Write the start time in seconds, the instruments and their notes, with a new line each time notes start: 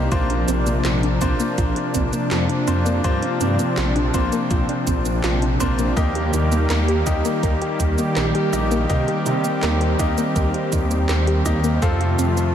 Already playing: analog synth pad C3 A#3, synth arpeggio sound A#3
0.11 detuned saw bass A#1, analog synth pad F3 D4, grand piano A#3 D4 F4 C5, synth arpeggio sound F4, kick, closed hi-hat, shaker
0.30 synth arpeggio sound D4, closed hi-hat
0.48 detuned saw bass A#1, synth arpeggio sound C4, closed hi-hat, shaker
0.66 synth arpeggio sound A#3, closed hi-hat, shaker
0.85 detuned saw bass A#1, synth arpeggio sound F4, snare, clap, closed hi-hat, shaker
1.03 synth arpeggio sound D4, closed hi-hat
1.21 detuned saw bass A#1, grand piano A#3 D4 F4 C5, synth arpeggio sound C4, kick, closed hi-hat, shaker
1.40 synth arpeggio sound A#3, closed hi-hat, shaker
1.58 detuned saw bass A#1, synth arpeggio sound F4, kick, closed hi-hat, shaker
1.76 synth arpeggio sound D4, closed hi-hat
1.94 detuned saw bass A#1, synth arpeggio sound C4, kick, closed hi-hat, shaker
2.13 synth arpeggio sound A#3, closed hi-hat, shaker
2.31 detuned saw bass F2, synth arpeggio sound F4, snare, clap, closed hi-hat, shaker
2.49 synth arpeggio sound D4, closed hi-hat
2.67 detuned saw bass F2, grand piano A#3 D4 F4 C5, synth arpeggio sound C4, closed hi-hat, shaker
2.86 synth arpeggio sound A#3, closed hi-hat, shaker
3.04 detuned saw bass G2, grand piano A#3 D4 F4 C5, analog synth pad C4, synth arpeggio sound F4, kick, closed hi-hat, shaker
3.22 synth arpeggio sound D4, closed hi-hat
3.41 detuned saw bass G2, synth arpeggio sound C4, closed hi-hat, shaker
3.59 synth arpeggio sound A#3, closed hi-hat, shaker
3.77 detuned saw bass A#1, synth arpeggio sound F4, snare, clap, closed hi-hat, shaker
3.96 synth arpeggio sound D4, closed hi-hat
4.14 detuned saw bass A#1, grand piano A#3 D4 F4 C5, synth arpeggio sound C4, kick, closed hi-hat, shaker
4.32 synth arpeggio sound A#3, closed hi-hat, shaker
4.51 detuned saw bass A#1, synth arpeggio sound F4, kick, closed hi-hat, shaker
4.69 synth arpeggio sound D4, closed hi-hat
4.87 detuned saw bass A#1, synth arpeggio sound C4, kick, closed hi-hat, shaker
5.05 synth arpeggio sound A#3, closed hi-hat, shaker
5.24 detuned saw bass A#1, synth arpeggio sound F4, snare, clap, closed hi-hat, shaker
5.42 synth arpeggio sound D4, closed hi-hat
5.60 detuned saw bass A#1, grand piano A#3 D4 F4 C5, synth arpeggio sound C4, kick, closed hi-hat, shaker
5.79 synth arpeggio sound A#3, closed hi-hat, shaker
5.97 detuned saw bass D#2, analog synth pad D#3 G3 A#3 G4, grand piano A#3 D#4 G4 D#5, synth arpeggio sound A#4, kick, closed hi-hat, shaker
6.15 synth arpeggio sound G4, closed hi-hat
6.33 detuned saw bass D#2, synth arpeggio sound D#4, closed hi-hat, shaker
6.52 synth arpeggio sound A#3, closed hi-hat, shaker
6.70 detuned saw bass D#2, synth arpeggio sound A#4, snare, clap, closed hi-hat, shaker
6.88 synth arpeggio sound G4, closed hi-hat
7.06 detuned saw bass D#2, grand piano A#3 D#4 G4 D#5, synth arpeggio sound D#4, kick, closed hi-hat, shaker
7.25 synth arpeggio sound A#3, closed hi-hat, shaker
7.43 detuned saw bass D#2, synth arpeggio sound A#4, kick, closed hi-hat, shaker
7.62 synth arpeggio sound G4, closed hi-hat
7.80 detuned saw bass D#2, synth arpeggio sound D#4, kick, closed hi-hat, shaker
7.98 synth arpeggio sound A#3, closed hi-hat, shaker
8.16 detuned saw bass A#1, synth arpeggio sound A#4, snare, clap, closed hi-hat, shaker
8.35 synth arpeggio sound G4, closed hi-hat
8.53 detuned saw bass A#1, grand piano A#3 D#4 G4 D#5, synth arpeggio sound D#4, closed hi-hat, shaker
8.71 synth arpeggio sound A#3, closed hi-hat, shaker
8.89 detuned saw bass C3, grand piano A#3 D#4 G4 D#5, analog synth pad C4, synth arpeggio sound A#4, kick, closed hi-hat, shaker
9.08 synth arpeggio sound G4, closed hi-hat
9.26 detuned saw bass C3, synth arpeggio sound D#4, closed hi-hat, shaker
9.44 synth arpeggio sound A#3, closed hi-hat, shaker
9.63 detuned saw bass D#2, synth arpeggio sound A#4, snare, clap, closed hi-hat, shaker
9.81 synth arpeggio sound G4, closed hi-hat
9.99 detuned saw bass D#2, grand piano A#3 D#4 G4 D#5, synth arpeggio sound D#4, kick, closed hi-hat, shaker
10.18 synth arpeggio sound A#3, closed hi-hat, shaker
10.36 detuned saw bass D#2, synth arpeggio sound A#4, kick, closed hi-hat, shaker
10.54 synth arpeggio sound G4, closed hi-hat
10.72 detuned saw bass D#2, synth arpeggio sound D#4, kick, closed hi-hat, shaker
10.91 synth arpeggio sound A#3, closed hi-hat, shaker
11.09 detuned saw bass D#2, synth arpeggio sound A#4, snare, clap, closed hi-hat, shaker
11.27 synth arpeggio sound G4, closed hi-hat
11.46 detuned saw bass D#2, grand piano A#3 D#4 G4 D#5, synth arpeggio sound D#4, kick, closed hi-hat, shaker
11.64 synth arpeggio sound A#3, closed hi-hat, shaker
11.82 detuned saw bass F2, analog synth pad C3 F3 A3 F4, grand piano C4 F4 A4 F5, synth arpeggio sound A4, kick, closed hi-hat, shaker
12.00 synth arpeggio sound F4, closed hi-hat
12.19 detuned saw bass F2, synth arpeggio sound C4, closed hi-hat, shaker
12.37 synth arpeggio sound A3, closed hi-hat, shaker